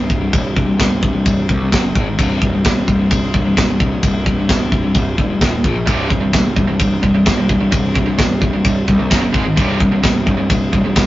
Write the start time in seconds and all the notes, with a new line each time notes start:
Already playing: C1
0.10 C2 G2, kick
0.21 C2 G2
0.32 C1 C2 G2, kick, ride bell
0.55 C2 G2, kick
0.66 C2 G2
0.78 C1 C2 G2, kick, snare, ride bell
1.01 C2 G2, kick
1.13 C2 G2
1.25 C1 C2 G2, kick, ride bell
1.48 C2 G2, kick
1.60 C2 G2
1.71 F#1 F#2 C#3 F#3, kick, snare, ride bell
1.83 F#2 C#3
1.95 G#1 G#2 D#3 G#3, kick
2.06 G#2 D#3
2.18 C1 C2 G2 C3, kick, ride bell
2.42 C1 C2 G2, kick
2.53 C2 G2
2.65 C1 C2 G2, kick, snare, ride bell
2.87 C1 C2 G2, kick
2.99 C2 G2
3.10 C1 C2 G2, kick, ride bell
3.33 C1 C2 G2, kick
3.44 C2 G2
3.56 C1 C2 G2, kick, snare, ride bell
3.68 C2 G2
3.80 C2 G2, kick
3.92 C2 G2
4.03 C1 C2 G2, kick, ride bell
4.26 C2 G2, kick
4.39 C2 G2
4.49 C1 C2 G2, kick, snare, ride bell
4.72 C2 G2, kick
4.84 C2 G2
4.95 C1 C2 G2, kick, ride bell
5.18 F1 C2 G2, kick
5.30 C2 G2
5.41 D#1 D#2 A#2 D#3, kick, snare, ride bell
5.53 D#2 A#2
5.64 A#1 A#2 F3 A#3, kick
5.76 A#2 F3
5.87 C1 C2 G2 C3, kick, ride bell
6.10 C1 C2 G2, kick
6.22 C2 G2
6.33 C1 C2 G2, kick, snare, ride bell
6.56 C1 C2 G2, kick
6.68 C2 G2
6.79 C1 C2 G2, kick, ride bell
7.03 C1 C2 G2, kick
7.15 C2 G2
7.26 C1 C2 G2, kick, snare, ride bell
7.37 C2 G2
7.49 C2 G2, kick
7.60 C2 G2
7.72 C1 C2 G2, kick, ride bell
7.95 C2 G2, kick
8.07 C2 G2
8.18 C1 C2 G2, kick, snare, ride bell
8.41 C2 G2, kick
8.53 C2 G2
8.65 C1 C2 G2, kick, ride bell
8.88 C2 G2, kick
8.99 C2 G2
9.11 F#1 F#2 C#3 F#3, kick, snare, ride bell
9.22 F#2 C#3
9.32 G#1 G#2 D#3 G#3, kick
9.45 G#2 D#3
9.57 C1 C2 G2 C3, kick, ride bell
9.80 C1 C2 G2, kick
9.92 C2 G2
10.03 C1 C2 G2, kick, snare, ride bell
10.26 C1 C2 G2, kick
10.38 C2 G2
10.50 C1 C2 G2, kick, ride bell
10.73 C1 C2 G2, kick
10.84 C2 G2
10.95 C1 C2 G2, kick, snare, ride bell